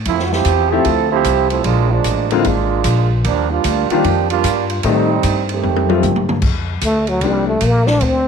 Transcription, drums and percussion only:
0.05 kick soft
0.05 ride medium
0.19 snare soft
0.33 snare soft
0.45 kick soft
0.45 hi-hat pedal medium
0.45 ride medium
0.85 kick soft
0.85 ride medium
1.24 kick soft
1.24 hi-hat pedal medium
1.24 ride medium
1.50 ride soft
1.64 kick soft
1.64 ride medium
2.04 kick soft
2.04 hi-hat pedal medium
2.04 ride medium
2.30 ride soft
2.44 kick soft
2.44 ride medium
2.84 kick soft
2.84 hi-hat pedal medium
2.84 ride medium
3.24 kick soft
3.24 ride medium
3.64 kick soft
3.64 hi-hat pedal medium
3.64 ride medium
3.90 ride soft
4.04 kick soft
4.04 ride medium
4.30 ride soft
4.44 kick soft
4.44 hi-hat pedal medium
4.44 ride medium
4.70 ride soft
4.83 kick soft
4.83 ride medium
5.23 kick soft
5.23 hi-hat pedal medium
5.23 ride medium
5.49 ride soft
5.63 high tom medium
5.76 high tom medium
5.90 high tom medium
6.03 hi-hat pedal medium
6.03 mid tom medium
6.16 mid tom medium
6.29 mid tom medium
6.42 kick medium
6.42 crash medium
6.81 kick soft
6.81 hi-hat pedal medium
6.81 ride medium
7.07 ride soft
7.21 kick soft
7.21 ride medium
7.61 kick soft
7.61 hi-hat pedal soft
7.61 ride medium
7.87 snare medium
8.01 kick soft
8.01 ride medium

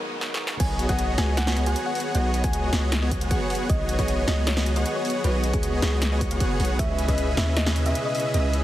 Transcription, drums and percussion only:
0.21 snare medium
0.34 snare medium
0.47 snare medium
0.60 kick loud
0.60 closed hi-hat medium
0.60 crash loud
0.79 closed hi-hat medium
0.89 kick loud
0.89 closed hi-hat medium
0.99 closed hi-hat medium
1.18 snare medium
1.18 closed hi-hat medium
1.37 snare loud
1.37 closed hi-hat medium
1.47 snare medium
1.57 closed hi-hat medium
1.66 closed hi-hat medium
1.76 closed hi-hat medium
1.95 open hi-hat medium
2.00 closed hi-hat medium
2.15 closed hi-hat medium
2.34 closed hi-hat medium
2.44 kick loud
2.44 closed hi-hat medium
2.53 closed hi-hat medium
2.73 snare medium
2.73 closed hi-hat medium
2.92 snare loud
2.92 closed hi-hat medium
3.11 kick medium
3.11 closed hi-hat medium
3.21 closed hi-hat medium
3.31 kick loud
3.31 closed hi-hat medium
3.50 open hi-hat medium
3.55 closed hi-hat medium
3.70 kick loud
3.70 closed hi-hat medium
3.89 closed hi-hat medium
3.99 kick loud
3.99 closed hi-hat medium
4.08 closed hi-hat medium
4.28 snare medium
4.28 closed hi-hat medium
4.47 snare loud
4.47 closed hi-hat medium
4.57 snare medium
4.66 closed hi-hat medium
4.76 closed hi-hat medium
4.86 closed hi-hat medium
5.05 open hi-hat medium
5.10 closed hi-hat medium
5.24 closed hi-hat medium
5.44 closed hi-hat medium
5.54 kick loud
5.54 closed hi-hat medium
5.63 closed hi-hat medium
5.82 snare medium
5.82 closed hi-hat medium
6.02 snare loud
6.02 closed hi-hat medium
6.21 kick medium
6.21 closed hi-hat medium
6.31 closed hi-hat medium
6.40 kick loud
6.40 closed hi-hat medium
6.60 open hi-hat medium
6.65 closed hi-hat medium
6.79 kick loud
6.79 closed hi-hat medium
6.99 closed hi-hat medium
7.08 kick loud
7.08 closed hi-hat medium
7.18 closed hi-hat medium
7.37 snare medium
7.37 closed hi-hat medium
7.57 snare loud
7.57 closed hi-hat medium
7.66 snare medium
7.76 closed hi-hat medium
7.86 closed hi-hat medium
7.95 closed hi-hat medium
8.15 open hi-hat medium
8.20 closed hi-hat medium
8.34 closed hi-hat medium
8.54 closed hi-hat medium

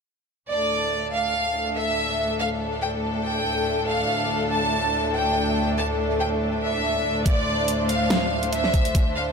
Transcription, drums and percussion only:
7.26 kick loud
7.26 closed hi-hat medium
7.68 closed hi-hat medium
7.89 closed hi-hat medium
8.10 snare loud
8.10 closed hi-hat medium
8.43 closed hi-hat soft
8.53 closed hi-hat medium
8.64 snare soft
8.74 kick loud
8.74 closed hi-hat soft
8.85 closed hi-hat soft
8.95 kick loud
8.95 closed hi-hat medium

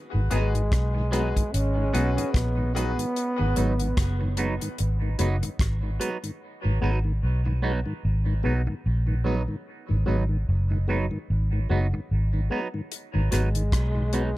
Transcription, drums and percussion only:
0.31 closed hi-hat medium
0.55 closed hi-hat soft
0.72 kick loud
0.72 cross-stick loud
0.72 closed hi-hat medium
1.13 closed hi-hat medium
1.36 kick medium
1.36 closed hi-hat medium
1.54 closed hi-hat medium
1.95 closed hi-hat medium
2.18 closed hi-hat medium
2.34 kick loud
2.34 cross-stick loud
2.34 closed hi-hat medium
2.77 closed hi-hat medium
2.99 closed hi-hat medium
3.16 closed hi-hat medium
3.56 closed hi-hat medium
3.80 closed hi-hat soft
3.97 kick loud
3.97 cross-stick loud
3.97 closed hi-hat medium
4.37 closed hi-hat medium
4.61 closed hi-hat medium
4.78 closed hi-hat medium
5.19 closed hi-hat medium
5.43 closed hi-hat soft
5.59 kick loud
5.59 cross-stick loud
5.59 closed hi-hat medium
6.01 closed hi-hat medium
6.24 closed hi-hat soft
12.92 closed hi-hat medium
13.32 cross-stick medium
13.32 closed hi-hat medium
13.55 closed hi-hat soft
13.72 kick loud
13.72 cross-stick loud
13.72 closed hi-hat loud
14.13 closed hi-hat medium

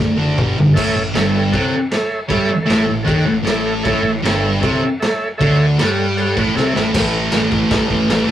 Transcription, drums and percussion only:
0.38 kick loud
0.38 mid tom medium
0.58 floor tom medium
0.77 kick loud
0.77 crash loud
0.77 crash medium
1.15 snare loud
1.15 crash medium
1.53 kick loud
1.53 crash medium
1.91 snare loud
1.91 crash medium
2.30 kick loud
2.30 crash medium
2.70 snare loud
2.70 crash medium
3.07 kick loud
3.07 crash medium
3.47 snare loud
3.47 crash medium
3.85 kick loud
3.85 crash medium
4.25 snare loud
4.25 crash medium
4.63 kick loud
4.63 crash medium
5.02 snare loud
5.02 crash medium
5.41 kick loud
5.41 crash medium
5.79 snare loud
5.79 crash medium
6.18 crash medium
6.37 kick loud
6.57 snare medium
6.76 snare medium
6.94 kick loud
6.94 snare loud
6.94 crash loud
6.94 crash medium
7.32 snare loud
7.32 crash medium
7.52 kick medium
7.71 kick loud
7.71 snare loud
7.71 crash medium
7.90 kick medium
8.10 snare loud
8.10 crash medium

